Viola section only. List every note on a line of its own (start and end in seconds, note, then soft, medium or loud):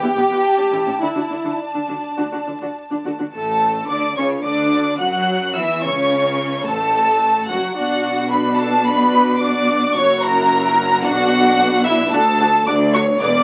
0.02 0.08 B3 soft
0.02 0.08 E4 medium
0.16 0.22 B3 medium
0.30 0.36 B3 medium
0.30 0.36 E4 medium
0.57 0.63 C#4 medium
0.71 0.77 C#4 medium
0.71 0.77 E4 medium
0.86 0.92 C#4 soft
0.86 0.92 E4 soft
1.00 1.06 D4 soft
1.00 1.06 F#4 medium
1.15 1.21 D4 soft
1.15 1.21 F#4 soft
1.30 1.36 D4 soft
1.45 1.50 D4 soft
1.45 1.50 F#4 soft
1.75 1.80 D4 soft
1.89 1.95 D4 medium
1.89 1.95 F#4 soft
2.17 2.23 D4 soft
2.17 2.23 F#4 soft
2.32 2.38 D4 soft
2.32 2.38 F#4 soft
2.47 2.53 D4 soft
2.61 2.67 D4 soft
2.61 2.67 F#4 soft
2.90 2.96 D4 soft
3.05 3.11 D4 soft
3.05 3.11 F#4 medium
3.19 3.25 D4 soft
3.19 3.24 F#4 soft
3.33 3.85 A3 medium
3.89 3.97 D4 medium
4.17 4.25 C#4 medium
4.44 4.99 D4 medium
5.00 5.55 F#4 medium
5.56 5.84 E4 medium
5.84 6.65 C#4 medium
6.66 7.49 A3 medium
7.49 7.77 F#3 medium
7.76 8.27 D4 medium
7.76 8.28 F#4 medium
8.31 8.84 D4 medium
8.31 8.84 F#4 medium
8.85 9.39 D4 medium
8.85 9.39 F#4 medium
9.40 9.94 D4 medium
9.40 9.94 F#4 medium
9.96 11.04 E4 medium
9.96 11.02 F#4 medium
11.05 12.12 D4 medium
11.05 12.11 F#4 medium
12.13 12.21 D4 medium
12.13 12.21 F#4 medium
12.39 12.47 D4 medium
12.39 12.47 F#4 medium
12.67 12.75 D4 medium
12.67 12.75 F#4 medium
12.94 13.02 D4 medium
12.94 13.02 F#4 medium
13.21 13.29 B3 medium
13.21 13.29 G#4 medium